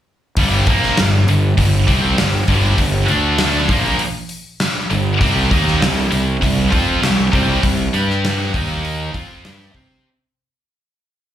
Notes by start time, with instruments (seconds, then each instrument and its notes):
0.37 fingered electric bass G1, distorted electric guitar G2 D3 G3, kick, open hi-hat
0.67 fingered electric bass A#1, distorted electric guitar A#2 F3 A#3, kick, open hi-hat
0.83 snare
0.97 fingered electric bass G1, distorted electric guitar G2 D3, snare, open hi-hat
1.28 fingered electric bass G1, distorted electric guitar G2 D3, open hi-hat
1.57 fingered electric bass G1, distorted electric guitar G2 D3, kick, open hi-hat
1.88 fingered electric bass C2, distorted electric guitar C3 G3 C4, kick, open hi-hat
2.17 fingered electric bass G1, distorted electric guitar G2 D3, snare, open hi-hat
2.48 fingered electric bass G1, distorted electric guitar G2 D3 G3, kick, open hi-hat
2.78 fingered electric bass G1, distorted electric guitar G2 D3, kick, open hi-hat
3.08 fingered electric bass D2, distorted electric guitar D3 A3 D4, open hi-hat
3.38 snare, open hi-hat
3.69 fingered electric bass A#1, distorted electric guitar A#2 F3 A#3, kick, open hi-hat
3.99 open hi-hat
4.29 open hi-hat
4.60 snare, open hi-hat
4.90 fingered electric bass G1, distorted electric guitar G2 D3, open hi-hat
5.21 fingered electric bass C2, distorted electric guitar C3 G3 C4, kick, open hi-hat
5.51 fingered electric bass D#2, distorted electric guitar D#3 A#3 D#4, kick, open hi-hat
5.67 snare
5.81 fingered electric bass C2, distorted electric guitar C3 G3, snare, open hi-hat
6.11 fingered electric bass C2, distorted electric guitar C3 G3, open hi-hat
6.41 fingered electric bass C2, distorted electric guitar C3 G3, kick, open hi-hat
6.70 fingered electric bass F2, distorted electric guitar F3 C4 F4, kick, open hi-hat
7.01 fingered electric bass C2, distorted electric guitar C3 G3, snare, open hi-hat
7.32 fingered electric bass C2, distorted electric guitar C3 G3 C4, kick, open hi-hat
7.63 fingered electric bass C2, distorted electric guitar C3 G3, kick, open hi-hat
7.93 fingered electric bass G2, distorted electric guitar G3 D4 G4, open hi-hat
8.10 snare
8.25 snare, open hi-hat
8.54 fingered electric bass D#2, distorted electric guitar D#3 A#3 D#4, kick, open hi-hat
8.85 open hi-hat
9.13 fingered electric bass F2, distorted electric guitar F3 C4 F4, kick, open hi-hat
9.45 fingered electric bass G2, distorted electric guitar G3 D4 G4, snare, open hi-hat
9.60 snare
9.74 fingered electric bass C3, distorted electric guitar C4 G4 C5, kick, open hi-hat